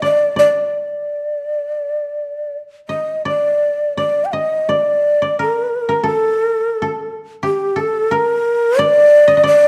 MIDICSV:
0, 0, Header, 1, 3, 480
1, 0, Start_track
1, 0, Tempo, 699301
1, 246, Time_signature, 4, 2, 24, 8
1, 1208, Tempo, 743494
1, 2168, Tempo, 710900
1, 3608, Tempo, 684151
1, 5528, Tempo, 665927
1, 6654, End_track
2, 0, Start_track
2, 0, Title_t, "Koto"
2, 0, Program_c, 0, 107
2, 14, Note_on_c, 0, 74, 68
2, 246, Note_off_c, 0, 74, 0
2, 249, Note_on_c, 0, 74, 59
2, 1905, Note_off_c, 0, 74, 0
2, 1938, Note_on_c, 0, 75, 49
2, 2172, Note_on_c, 0, 74, 60
2, 2212, Note_off_c, 0, 75, 0
2, 2657, Note_off_c, 0, 74, 0
2, 2659, Note_on_c, 0, 74, 60
2, 2900, Note_on_c, 0, 75, 55
2, 2941, Note_off_c, 0, 74, 0
2, 3142, Note_on_c, 0, 74, 62
2, 3182, Note_off_c, 0, 75, 0
2, 3497, Note_off_c, 0, 74, 0
2, 3499, Note_on_c, 0, 74, 56
2, 3617, Note_on_c, 0, 70, 64
2, 3961, Note_off_c, 0, 70, 0
2, 3964, Note_on_c, 0, 70, 59
2, 4068, Note_on_c, 0, 69, 62
2, 4110, Note_off_c, 0, 70, 0
2, 4616, Note_off_c, 0, 69, 0
2, 4618, Note_off_c, 0, 74, 0
2, 4618, Note_on_c, 0, 69, 59
2, 5045, Note_on_c, 0, 67, 68
2, 5275, Note_off_c, 0, 69, 0
2, 5278, Note_on_c, 0, 69, 61
2, 5525, Note_on_c, 0, 70, 67
2, 5568, Note_off_c, 0, 69, 0
2, 6012, Note_on_c, 0, 74, 79
2, 6364, Note_on_c, 0, 75, 74
2, 6407, Note_off_c, 0, 74, 0
2, 6428, Note_off_c, 0, 75, 0
2, 6431, Note_on_c, 0, 75, 51
2, 6479, Note_on_c, 0, 74, 75
2, 6503, Note_off_c, 0, 67, 0
2, 6522, Note_off_c, 0, 75, 0
2, 6654, Note_off_c, 0, 70, 0
2, 6654, Note_off_c, 0, 74, 0
2, 6654, End_track
3, 0, Start_track
3, 0, Title_t, "Shakuhachi"
3, 0, Program_c, 1, 77
3, 26, Note_on_c, 1, 74, 74
3, 239, Note_off_c, 1, 74, 0
3, 265, Note_on_c, 1, 74, 69
3, 1736, Note_off_c, 1, 74, 0
3, 1936, Note_on_c, 1, 75, 59
3, 2155, Note_off_c, 1, 75, 0
3, 2192, Note_on_c, 1, 74, 70
3, 2635, Note_off_c, 1, 74, 0
3, 2657, Note_on_c, 1, 74, 74
3, 2845, Note_on_c, 1, 79, 51
3, 2855, Note_off_c, 1, 74, 0
3, 2896, Note_on_c, 1, 75, 66
3, 2906, Note_off_c, 1, 79, 0
3, 3145, Note_on_c, 1, 74, 66
3, 3155, Note_off_c, 1, 75, 0
3, 3614, Note_off_c, 1, 74, 0
3, 3628, Note_on_c, 1, 70, 69
3, 4061, Note_off_c, 1, 70, 0
3, 4084, Note_on_c, 1, 69, 83
3, 4840, Note_off_c, 1, 69, 0
3, 5057, Note_on_c, 1, 67, 77
3, 5304, Note_on_c, 1, 69, 73
3, 5314, Note_off_c, 1, 67, 0
3, 5537, Note_on_c, 1, 70, 85
3, 5547, Note_off_c, 1, 69, 0
3, 6020, Note_on_c, 1, 74, 103
3, 6031, Note_off_c, 1, 70, 0
3, 6491, Note_off_c, 1, 74, 0
3, 6505, Note_on_c, 1, 74, 102
3, 6654, Note_off_c, 1, 74, 0
3, 6654, End_track
0, 0, End_of_file